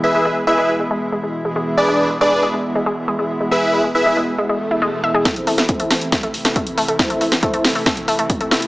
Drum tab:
HH |----------------|----------------|----------------|xxoxxxoxxxoxxxox|
SD |----------------|----------------|----------------|o--o--o-o--o----|
BD |----------------|----------------|----------------|o---o---o---o---|

HH |xxoxxxooxxoxxxox|
SD |o--o--o-o-----o-|
BD |o---o---o---o---|